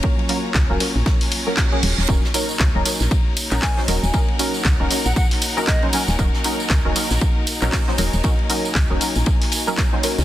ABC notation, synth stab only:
X:1
M:4/4
L:1/16
Q:"Swing 16ths" 1/4=117
K:Ebm
V:1 name="Synth stab"
[G,B,DB]2 [G,B,DB]3 [G,B,DB] [G,B,DB]4- [G,B,DB] [G,B,DB]2 [G,B,DA]3 | [G,DEB]2 [G,DEB]3 [G,DEB] [G,DEB]4- [G,DEB] [G,DEB]2 [G,DE=c] [G,DEB]2 | [G,DEB]2 [G,DEB]3 [G,DEB] [G,DEB]4- [G,DEB] [G,DEB]2 [G,DE=c] [G,DEB]2 | [G,DEB]2 [G,DEB]3 [G,DEB] [G,DEB]4- [G,DEB] [G,DEB]2 [G,DE=c] [G,DEB]2 |
[G,DEB]2 [G,DEB]3 [G,DEB] [G,DEB]4- [G,DEB] [G,DEB]2 [G,DE=c] [G,DEB]2 |]